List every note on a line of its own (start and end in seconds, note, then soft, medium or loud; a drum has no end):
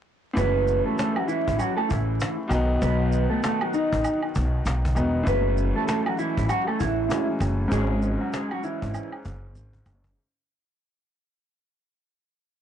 0.34 0.80 F#1 loud
0.34 2.45 A2 medium
0.34 2.46 E3 medium
0.34 2.47 F#3 medium
0.34 0.83 B4 loud
0.34 cajon bass loud
0.34 maracas medium
0.38 2.48 G#3 medium
0.38 0.83 B3 medium
0.38 2.49 C#4 medium
0.67 cajon slap soft
0.67 maracas soft
0.86 0.97 A3 medium
0.86 0.97 A4 medium
0.98 1.15 A3 medium
0.98 1.14 A4 medium
0.98 cajon slap loud
0.98 maracas medium
1.16 1.28 F#3 medium
1.16 1.27 F#4 medium
1.16 high woodblock medium
1.28 1.56 E3 medium
1.28 1.56 E4 medium
1.28 cajon slap soft
1.28 maracas soft
1.48 1.58 A1 medium
1.48 cajon bass loud
1.59 1.76 F#3 medium
1.59 1.75 F#4 medium
1.59 cajon slap soft
1.59 high woodblock medium
1.59 maracas medium
1.76 1.89 A3 medium
1.76 1.88 A4 medium
1.76 high woodblock medium
1.89 2.18 A1 medium
1.89 2.36 E3 medium
1.89 2.35 E4 medium
1.89 cajon bass loud
1.89 maracas medium
2.20 cajon slap loud
2.20 maracas medium
2.48 2.78 B1 medium
2.48 4.90 B2 medium
2.48 4.91 D#3 medium
2.48 4.92 F#3 medium
2.48 cajon bass loud
2.48 high woodblock medium
2.48 maracas soft
2.52 4.93 B3 medium
2.52 4.93 D#4 medium
2.82 3.25 B1 loud
2.82 3.28 B3 medium
2.82 3.28 B4 medium
2.82 cajon bass loud
2.82 maracas medium
3.12 cajon slap soft
3.12 maracas soft
3.30 3.42 A3 medium
3.30 3.41 A4 medium
3.43 3.60 A3 medium
3.43 3.59 A4 medium
3.43 cajon slap loud
3.43 cajon slap medium
3.43 maracas medium
3.61 3.73 F#3 medium
3.61 3.73 F#4 medium
3.61 high woodblock medium
3.73 4.19 D#4 medium
3.73 4.20 D#5 medium
3.73 cajon slap soft
3.73 maracas soft
3.93 4.03 A1 medium
3.93 cajon bass loud
4.04 cajon slap soft
4.04 high woodblock medium
4.04 maracas medium
4.23 high woodblock medium
4.35 4.62 B1 loud
4.35 cajon bass loud
4.35 maracas medium
4.66 4.98 B1 medium
4.66 cajon slap loud
4.66 cajon slap medium
4.66 maracas medium
4.85 cajon bass medium
4.94 5.23 E1 loud
4.94 5.26 B2 medium
4.94 5.26 D#3 medium
4.94 5.25 F#3 medium
4.94 5.27 B3 medium
4.94 5.27 D#4 medium
4.94 high woodblock medium
4.94 maracas medium
5.23 5.70 F#1 loud
5.23 7.05 A2 medium
5.23 7.06 E3 medium
5.23 7.07 F#3 medium
5.23 5.73 B4 medium
5.23 cajon bass loud
5.23 maracas medium
5.28 7.07 G#3 medium
5.28 5.73 B3 medium
5.28 7.08 C#4 medium
5.57 cajon slap soft
5.57 maracas soft
5.76 5.87 A3 medium
5.76 5.86 A4 medium
5.87 6.04 A3 medium
5.87 6.04 A4 medium
5.87 cajon slap loud
5.87 cajon slap medium
5.87 maracas medium
6.06 6.18 F#3 medium
6.06 6.17 F#4 medium
6.06 high woodblock medium
6.19 6.47 E3 medium
6.19 6.46 E4 medium
6.19 cajon slap soft
6.19 maracas soft
6.37 6.48 A1 loud
6.37 cajon bass loud
6.49 6.66 F#3 medium
6.49 6.65 F#4 medium
6.49 cajon slap soft
6.49 high woodblock medium
6.49 maracas medium
6.67 6.79 A3 medium
6.67 6.78 A4 medium
6.67 high woodblock medium
6.80 7.07 A1 medium
6.80 7.26 E3 medium
6.80 7.25 E4 medium
6.80 cajon bass loud
6.80 maracas medium
7.09 7.71 A2 medium
7.09 7.71 E3 soft
7.09 7.70 F#3 medium
7.09 7.72 G#3 soft
7.09 7.72 C#4 medium
7.09 cajon slap loud
7.09 cajon slap medium
7.09 maracas medium
7.40 7.68 F#1 medium
7.40 cajon bass medium
7.40 high woodblock medium
7.40 maracas medium
7.68 8.15 G#1 loud
7.68 10.11 G#2 medium
7.68 10.12 C#3 medium
7.68 10.12 F#3 medium
7.68 8.17 G#4 loud
7.68 cajon bass loud
7.68 maracas medium
7.72 8.18 G#3 medium
7.72 10.13 G#3 medium
7.72 10.14 C#4 medium
8.02 cajon slap soft
8.02 maracas soft
8.21 8.32 F#3 medium
8.21 8.32 F#4 medium
8.33 8.50 G#3 medium
8.33 8.49 G#4 medium
8.33 cajon slap loud
8.33 cajon slap medium
8.33 maracas medium
8.51 8.63 F#3 medium
8.51 8.63 F#4 medium
8.51 high woodblock medium
8.63 9.10 E3 medium
8.63 9.09 E4 medium
8.63 cajon slap soft
8.63 maracas soft
8.82 8.93 G#1 medium
8.82 cajon bass loud
8.94 cajon slap soft
8.94 high woodblock medium
8.94 maracas medium
9.12 high woodblock medium
9.25 9.55 F#1 medium
9.25 cajon bass loud
9.25 maracas medium
9.55 9.82 G#1 loud
9.55 cajon bass medium
9.55 cajon slap medium
9.55 maracas medium
9.73 cajon bass medium
9.86 10.13 F#1 medium
9.86 cajon bass medium
9.86 high woodblock medium
9.86 maracas medium
10.04 cajon bass medium